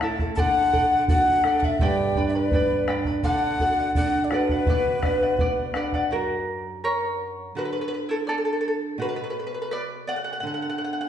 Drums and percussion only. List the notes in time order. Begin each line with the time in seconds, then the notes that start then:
0.01 bombo rim
0.19 bombo low
0.37 bombo low
0.73 bombo low
1.08 bombo low
1.44 bombo rim
1.62 bombo low
1.79 bombo low
2.15 bombo low
2.51 bombo low
2.88 bombo rim
3.05 bombo low
3.23 bombo low
3.59 bombo low
3.95 bombo low
4.31 bombo rim
4.49 bombo low
4.66 bombo low
5.03 bombo rim, bombo low
5.38 bombo low
5.74 bombo rim
5.92 bombo low